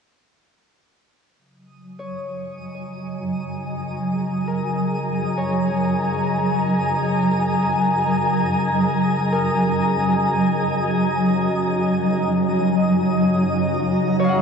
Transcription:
1.36 synth drone C#3 F#3, ambient pad F#3, synth texture D#6
1.49 ambient pad D#5 G#5
1.99 harp C#5
2.16 ambient pad A#5
4.48 harp A#4
5.38 harp C#5
9.33 harp A#4
13.35 synth texture A#5
13.78 ambient pad C#6
14.19 harp C#5
14.24 harp F5
14.29 harp F#5

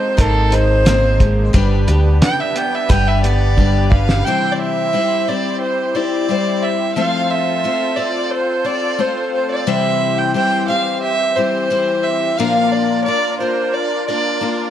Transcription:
Already playing: clean electric guitar G#3 C4 D#4, accordion A#3 C4 D#4 C5, twelve-string acoustic guitar D#4 G#4 C5, fiddle C5
0.17 fingered electric bass G#1, twelve-string acoustic guitar A#3 D#4 C5, fiddle A4, clean electric guitar A#4, kick, closed hi-hat
0.51 clean electric guitar D#4, twelve-string acoustic guitar D#4 G#4 C5, fiddle C5, closed hi-hat
0.85 twelve-string acoustic guitar A#3 D#4 G#4 C5, clean electric guitar C4, snare, closed hi-hat
1.20 clean electric guitar G#3, kick, closed hi-hat
1.53 fingered electric bass G1, twelve-string acoustic guitar G3 D4 G4 B4, clean electric guitar G3, accordion B3 D4 G4 B4, kick, closed hi-hat
1.87 fingered electric bass D2, clean electric guitar G3, twelve-string acoustic guitar D4 G4 B4, closed hi-hat
2.21 clean electric guitar D4, fiddle G5, snare, closed hi-hat
2.40 fiddle E5
2.56 clean electric guitar B3, fiddle G5, closed hi-hat
2.75 fiddle E5
2.89 fingered electric bass G1, twelve-string acoustic guitar G3 D4 G4 B4, clean electric guitar B4, fiddle G5, kick, closed hi-hat
3.08 fiddle E5
3.23 clean electric guitar B3, twelve-string acoustic guitar D4 G4 B4, fiddle D5, closed hi-hat
3.57 twelve-string acoustic guitar G3 D4 G4 B4, clean electric guitar D4, kick
3.90 clean electric guitar G3, twelve-string acoustic guitar G4 B4, fiddle F5, kick
3.94 twelve-string acoustic guitar D4
4.09 snare
4.23 twelve-string acoustic guitar C3 E3 G3 C4, accordion C4 E4 G4 C5, fiddle G5
4.28 twelve-string acoustic guitar E4 C5
4.52 fiddle D5
4.59 fiddle E5
4.93 twelve-string acoustic guitar G3 C4 E4 C5
5.28 twelve-string acoustic guitar G3 C4 E4 C5, fiddle D5
5.60 fiddle C5
5.95 twelve-string acoustic guitar G3 C4 E4 C5, fiddle D5
6.29 twelve-string acoustic guitar G3 C4 E4 C5
6.62 fiddle E5
6.95 twelve-string acoustic guitar F3 A3 C4 F4 C5, accordion C4 F4 A4 C5, fiddle F5
7.30 fiddle E5
7.64 twelve-string acoustic guitar A3 C4 F4 C5
7.96 twelve-string acoustic guitar C4 F4 C5, fiddle D5
8.31 fiddle C5
8.65 twelve-string acoustic guitar C4 F4 C5, fiddle D5
8.99 twelve-string acoustic guitar A3 C4 F4 C5, fiddle C5
9.34 fiddle C5
9.51 fiddle D5
9.67 twelve-string acoustic guitar C3 E3 G3 C4 E4 C5, accordion E3 C4 G4 C5, fiddle E5
10.18 fiddle G5
10.34 twelve-string acoustic guitar G3 C4 E4 C5, fiddle G5
10.68 twelve-string acoustic guitar G3 C4 C5, fiddle F5
11.02 fiddle E5
11.36 twelve-string acoustic guitar G3 C4 E4 C5, fiddle C5
11.70 twelve-string acoustic guitar G3 C4 E4 C5
12.04 fiddle E5
12.37 twelve-string acoustic guitar A#2 F3 A#3 D4 F4 A#4, accordion D4 F4 A#4 D5, fiddle F5
12.72 fiddle D5
13.04 twelve-string acoustic guitar A#3 D4 F4, fiddle D5
13.08 twelve-string acoustic guitar A#4
13.40 twelve-string acoustic guitar A#3 D4 F4 A#4, fiddle C5
13.74 fiddle D5
14.07 twelve-string acoustic guitar A#3 D4 F4 A#4, fiddle D5
14.41 twelve-string acoustic guitar A#3 D4 F4 A#4

